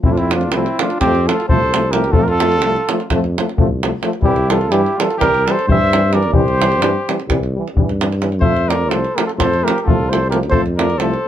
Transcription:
0.04 F2 F3 A3 C4 E4, davul low
0.11 D4 F4
0.17 C4 E4, davul high
0.31 F3 A3 D4 F4, davul high
0.41 davul high
0.52 C2 F3 A3 C4 E4, davul high
0.66 davul high
0.79 F3 A3 D4 F4, davul high
0.90 davul high
1.00 F2 F3 A3 C4 G4, davul high, davul low
1.15 davul high
1.27 F3 A3 F4 A4, davul high
1.40 davul high
1.48 C2 F3 A3 A4 C5, davul low
1.73 F3 A3, davul high
1.91 F3 A3 G4 A#4, davul high
2.04 davul high
2.11 F2 F3 A3 F4 A4, davul low
2.20 G4 A#4
2.26 F4 A4, davul high
2.40 F3 A3, davul high
2.52 davul high
2.61 C2 F3 A3, davul high
2.76 davul high
2.89 F3 A3, davul high
3.00 davul high
3.10 F2 F3 A3, davul high, davul low
3.24 davul high
3.36 F3 A3, davul high
3.49 davul high
3.58 C2 F3 A3, davul low
3.83 F3 A3, davul high
4.03 F3 A3, davul high
4.13 davul high
4.22 C2 E3 G3 E4 G4, davul low
4.36 davul high
4.49 E3 G3 F4 A4, davul high
4.61 davul high
4.69 G2 E3 G3 E4 G4, davul high
4.86 davul high
4.96 G3 F4
5.00 E3 A4, davul high
5.11 davul high
5.17 C2 E3 G3 G4 A#4, davul high, davul low
5.34 davul high
5.46 E3 G3 A4, davul high
5.51 C5
5.59 davul high
5.68 G2 E3 G3 C5 E5, davul low
5.93 E3 G3, davul high
6.11 E3 G3 A#4 D5, davul high
6.23 davul high
6.31 C2 E3 G3 G4, davul low
6.36 C5
6.48 davul high
6.59 E3 G3, davul high
6.72 davul high
6.80 G2 E3 G3, davul high
7.08 E3 G3, davul high
7.20 davul high
7.27 C2 E3 G3, davul high, davul low
7.43 davul high
7.55 E3 G3
7.68 davul high
7.75 G2 G3, davul low
7.80 E3
7.89 davul high
8.01 E3 G3, davul high
8.12 davul high
8.20 E3 G3, davul high
8.32 davul high
8.40 F2 F3 A3 C5 E5, davul low
8.57 davul high
8.67 F3 A3 A#4 D5, davul high
8.87 C2 F3 A3 A4 C5
8.91 davul high
9.04 davul high
9.15 F3 A3 G4 A#4, davul high
9.26 F4 A4, davul high
9.36 F2 F3 A3 A4 C5
9.40 davul high, davul low
9.54 davul high
9.63 F3 A3 G4 A#4
9.68 davul high
9.78 G4 A#4, davul high
9.84 C2 A3 F4 A4, davul low
9.89 F3
10.09 F3 A3 A4 C5, davul high
10.29 F3 A3 G4 A#4, davul high
10.43 davul high
10.49 F2 F3 A3 A4 C5, davul low
10.66 davul high
10.77 F3 A3 A#4 D5, davul high
10.90 davul high
10.98 C2 F3 A3 A4 C5, davul high
11.14 davul high

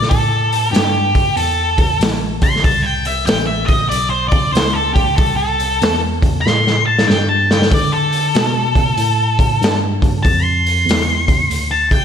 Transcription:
0.02 snare
0.09 A2 A4, kick, open hi-hat
0.52 open hi-hat
0.71 G2 G4, open hi-hat
0.76 snare
1.15 kick, open hi-hat
1.37 E2 A4, open hi-hat
1.78 kick, open hi-hat
2.00 A1, snare, open hi-hat
2.42 C6, kick, open hi-hat
2.56 snare
2.64 C2 A5, kick, open hi-hat
2.82 G5
3.05 E5, open hi-hat
3.26 A1 G5, snare, open hi-hat
3.47 E5
3.66 D#5, kick, open hi-hat
3.89 B1 D5, open hi-hat
4.10 C5
4.28 D5, kick, open hi-hat
4.53 C#2 C5, open hi-hat
4.57 snare
4.73 A4
4.94 G4, kick, open hi-hat
5.17 C2 A4, kick, open hi-hat
5.36 A4
5.60 open hi-hat
5.82 E2, snare, open hi-hat
6.22 kick, open hi-hat
6.41 C6
6.46 A2, snare
6.67 snare
6.86 A5
6.99 snare
7.07 G2 G5, snare
7.29 A5
7.51 G5, snare
7.62 snare
7.71 D3 D5, kick, open hi-hat
7.92 A4
8.12 open hi-hat
8.35 B2, snare, open hi-hat
8.75 kick, open hi-hat
8.97 A2, open hi-hat
9.39 kick, open hi-hat
9.61 G2, snare, open hi-hat
10.02 kick, open hi-hat
10.23 F2 A5, kick, open hi-hat
10.43 C6
10.66 open hi-hat
10.86 E2, open hi-hat
10.91 snare
11.28 kick, open hi-hat
11.49 D2, open hi-hat
11.71 A5
11.91 G5, kick, open hi-hat

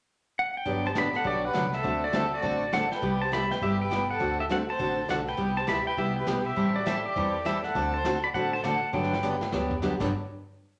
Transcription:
0.39 F#5
0.57 G5
0.65 G1 D3 F#3 B3 D4 G4, brush sweep, kick
0.85 C5 A5
0.95 D3 F#3 B3 D4 G4 D5 B5, snare, hi-hat pedal
1.13 A4 F#5, snare
1.24 B1 D3 F#3 B3 D4 F#4 G4 D5, brush sweep, kick
1.45 B4 F#5
1.53 C2 D3 F#3 B3 D4 G4, snare, hi-hat pedal
1.73 A4 E5, snare
1.83 D2 D3 A3 C4 F#4 A4, brush sweep, kick
2.04 F#4 D5
2.13 D3 A3 C4 F#4 A4 E5, snare, hi-hat pedal
2.34 F#4 D5
2.42 A1 D3 A3 C4 F#4 A4, brush sweep, kick
2.73 D3 A3 C4 F#4 A4 F#5, snare, hi-hat pedal
2.91 B4 G5, snare
3.02 C2 C3 G3 B3 E4 G4, brush sweep, kick
3.21 C5 A5
3.32 C3 G3 B3 E4 G4 E5 B5, snare, hi-hat pedal
3.51 B4 G5, snare
3.61 G1 C3 G3 B3 E4 G4 E5, brush sweep, kick
3.80 B4 G5
3.90 C3 G3 B3 E4 G4, snare, hi-hat pedal
4.10 A4 F#5
4.19 D2 D3 A3 C4 F#4 A4, brush sweep, kick
4.39 G4 E5
4.49 D3 A3 C4 F#4 A4 F#5, snare, hi-hat pedal
4.68 C5 A5
4.79 A1 D3 A3 C4 F#4 A4, brush sweep, kick
5.08 B1 D3 A3 C4 F#4 A4 F#5, snare, hi-hat pedal
5.27 B4 G5, snare
5.37 C2 C3 G3 B3 E4 G4, brush sweep, kick
5.57 C5 A5
5.67 D2 C3 G3 B3 E4 G4 E5 B5, snare, hi-hat pedal
5.87 B4 G5
5.97 C2 C3 G3 B3 E4 G4 E5, brush sweep, kick
6.16 B4 G5
6.27 B1 C3 G3 B3 E4 G4, snare, hi-hat pedal
6.46 G4 E5
6.56 A1 E3 G3 C4 E4 A4, brush sweep, kick
6.76 F#4 D5
6.86 E3 G3 C4 E4 G4 A4 E5, snare, hi-hat pedal
7.06 G4 D5
7.16 E2 E3 G3 C4 E4 A4, brush sweep, kick
7.45 E3 G3 C4 E4 G4 A4 E5, snare, hi-hat pedal
7.64 A4 F#5, snare
7.75 D2 D3 A3 C4 F#4 A4, brush sweep, kick
7.94 C5 A5
8.04 D3 A3 C4 F#4 A4, snare, hi-hat pedal
8.23 D5 B5
8.34 A1 D3 A3 C4 F#4 A4 F#5, brush sweep, kick
8.53 C5 A5
8.64 D3 A3 C4 F#4 A4 F#5, snare, hi-hat pedal
8.93 G1 D3 F#3 B3 D4 G4 B4 G5, brush sweep, kick
9.03 snare
9.13 snare
9.23 D3 F#3 B3 D4 G4, hi-hat pedal
9.41 snare
9.52 D2 D3 F#3 B3 D4 G4, snare
9.71 floor tom
9.82 D3 F#3 B3 D4 G4, snare, hi-hat pedal
10.00 G1 G2 D3 F#3 B3 D4 G4, kick, snare, crash

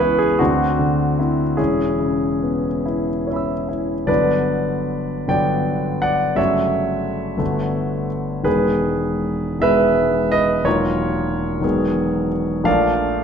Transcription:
Already playing: C#2 E3 G#4 C#5
0.00 B3 E4 B4
0.18 G#4
0.39 D2 C4 D4 F#4
0.79 D3
1.19 C4 E4
1.57 E1 C#4 E4 G#4
2.00 C#3
2.43 B3
2.86 E4
3.27 C#4 C#5 E5
3.33 B5 E6
3.69 E4
4.06 G1 D3 F#3 B3 D4 B4 D5
5.28 G1 D3 F#3 B3 D4 D5 G5
6.02 D5 F#5
6.35 G1 C#3 F#3 A3 F#4 C#5 E5
7.37 G1 D3 A3 B3 F#4
8.43 E1 D#3 G#3 B3 G#4 B4
9.59 E1 D#3 G#3 B3 G#4 B4 E5
10.32 B4 D#5
10.64 E1 D#3 F#3 A#3 F4 A#4 C#5
11.61 E1 D#3 F#3 B3 G#4
12.64 A#1 F3 A3 D4 A#4 D5 F5

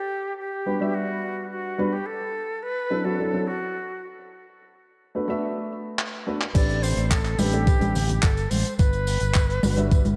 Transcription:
Already playing: G4
0.38 G4
0.66 G3 B3 D4 F#4 B4
0.80 G3 B3 D4 F#4 E5
0.94 F#4
1.51 F#4
1.78 G3 B3 D4 F#4 B4
1.93 G4
2.06 A4
2.63 B4
2.90 F#3 C4 D4 E4 A4
3.04 F#3 C4 D4 E4 F#4 A4
3.18 F#3 C4 D4 E4 A4
3.33 F#3 C4 D4 E4 A4
3.48 F#4
5.15 A3 B3 D4 F#4 B4
5.28 A3 B3 D4 F#4 E5
5.99 clap
6.27 A3 B3 D4 F#4 B4
6.41 clap
6.54 A1 A3 C4 D4 G4 B4 D5, kick, closed hi-hat, crash, tambourine
6.69 closed hi-hat, tambourine
6.83 C5, open hi-hat, tambourine
6.97 A1, closed hi-hat, tambourine
7.10 A4, kick, clap, closed hi-hat, tambourine
7.25 clap, closed hi-hat, tambourine
7.38 A1 A3 C4 D4 G4 B4, open hi-hat, tambourine, high conga
7.53 A3 C4 D4 G4 A4, closed hi-hat, tambourine
7.67 A3 C4 D4 G4 B4, kick, closed hi-hat, tambourine
7.80 A1 A3 C4 D4 G4 B4, closed hi-hat, tambourine, high conga
7.95 open hi-hat, tambourine, low conga
8.09 closed hi-hat, tambourine, low conga
8.22 G1 A4, kick, clap, closed hi-hat, tambourine
8.37 closed hi-hat, tambourine
8.50 A1 C5, open hi-hat, tambourine, high conga
8.66 closed hi-hat, tambourine
8.77 G1 B4, kick, closed hi-hat, tambourine
8.93 closed hi-hat, tambourine
9.07 open hi-hat, tambourine
9.20 G1, closed hi-hat, tambourine
9.34 kick, clap, closed hi-hat, tambourine
9.50 closed hi-hat, tambourine
9.63 G1 G3 B3 D4 F#4 B4, open hi-hat, tambourine, high conga
9.76 G3 B3 D4 F#4 E5, closed hi-hat, tambourine
9.91 kick, closed hi-hat, tambourine
10.05 G1, closed hi-hat, tambourine, high conga

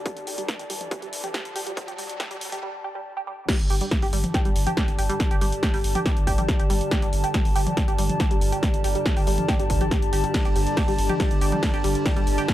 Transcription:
Already playing: G2 D3 G4 D5 A5, riser
0.06 G3, kick, closed hi-hat
0.17 closed hi-hat
0.27 G4, open hi-hat
0.38 G3, closed hi-hat
0.48 kick, snare, closed hi-hat
0.59 G4, closed hi-hat
0.70 G3, open hi-hat
0.81 closed hi-hat, mid tom
0.91 G4, kick, closed hi-hat
1.02 G3, closed hi-hat
1.13 open hi-hat
1.24 G4, closed hi-hat, mid tom
1.34 G3, kick, snare, closed hi-hat
1.45 closed hi-hat
1.56 G4, open hi-hat
1.67 G3, closed hi-hat
1.77 kick, closed hi-hat
1.88 G4, closed hi-hat
1.98 G3, open hi-hat
2.10 closed hi-hat
2.20 G4, kick, snare, closed hi-hat
2.31 G3, closed hi-hat
2.41 open hi-hat
2.52 G4, closed hi-hat, mid tom
2.63 G3
2.84 G4
2.95 G3
3.17 G4
3.27 G3
3.49 G2 D3 G3 G4, kick, snare, closed hi-hat, crash
3.60 G1, closed hi-hat
3.70 G1 G4, open hi-hat
3.76 D5
3.81 G3, closed hi-hat
3.91 A5, kick, snare, closed hi-hat
4.02 G1 G4, open hi-hat
4.13 G1 G3, open hi-hat
4.24 closed hi-hat, mid tom
4.34 G4, kick, snare, closed hi-hat
4.45 G1 G3, closed hi-hat
4.56 G1, open hi-hat
4.67 G4, closed hi-hat, mid tom
4.77 G3, kick, snare, closed hi-hat
4.88 G1, closed hi-hat
4.98 G1 G4, open hi-hat
5.09 G3, closed hi-hat
5.20 kick, snare, closed hi-hat
5.31 G1 G4, closed hi-hat
5.41 G1 G3, open hi-hat
5.52 closed hi-hat
5.63 G4, kick, snare, closed hi-hat
5.74 G1 G3, open hi-hat
5.84 G1, open hi-hat
5.95 G4, closed hi-hat, mid tom
6.06 G3, kick, snare, closed hi-hat
6.17 G1, closed hi-hat
6.27 G1 G4, kick, open hi-hat
6.38 G3, closed hi-hat, mid tom
6.49 kick, snare, closed hi-hat
6.59 G1 G4, closed hi-hat
6.70 G1 G3, open hi-hat
6.81 closed hi-hat
6.91 G4, kick, snare, closed hi-hat
7.02 G1 G3, closed hi-hat
7.13 G1, open hi-hat
7.24 G4, closed hi-hat
7.34 G3, kick, snare, closed hi-hat
7.45 G1, open hi-hat
7.56 G1 G4, open hi-hat
7.67 G3, closed hi-hat, mid tom
7.77 kick, snare, closed hi-hat
7.88 G1 G4, closed hi-hat
7.99 G1 G3, open hi-hat
8.09 closed hi-hat, mid tom
8.20 G4, kick, snare, closed hi-hat
8.31 G1 G3, closed hi-hat
8.41 G1, open hi-hat
8.52 G4, closed hi-hat
8.63 G3, kick, snare, closed hi-hat
8.74 G1, closed hi-hat
8.84 G1 G4, open hi-hat
8.95 G3, closed hi-hat
9.06 kick, snare, closed hi-hat
9.17 G1 G4, open hi-hat
9.27 G1 G3, open hi-hat
9.38 closed hi-hat, mid tom
9.48 G4, kick, snare, closed hi-hat
9.59 G1 G3, closed hi-hat
9.70 G1, kick, open hi-hat
9.81 G4, closed hi-hat, mid tom
9.91 G3, kick, snare, closed hi-hat
10.02 G1, closed hi-hat
10.13 G1 G4, open hi-hat
10.24 G3, closed hi-hat
10.34 kick, snare, closed hi-hat, ride
10.45 G1 G4, closed hi-hat
10.56 G1 G3, open hi-hat
10.67 closed hi-hat
10.77 G4, kick, snare, closed hi-hat, ride
10.88 G1 G3, open hi-hat
10.98 G1, open hi-hat
11.09 G4, closed hi-hat, mid tom
11.20 G3, kick, snare, closed hi-hat, ride
11.31 G1, closed hi-hat
11.41 G1 G4, open hi-hat
11.52 G3, closed hi-hat, mid tom
11.63 kick, snare, closed hi-hat, ride
11.74 G1 G4, closed hi-hat
11.84 G1 G3, open hi-hat
11.95 closed hi-hat
12.06 G4, kick, snare, closed hi-hat, ride
12.16 G1 G3, closed hi-hat
12.27 G1, open hi-hat
12.38 G4, closed hi-hat
12.48 G3, kick, snare, closed hi-hat, ride

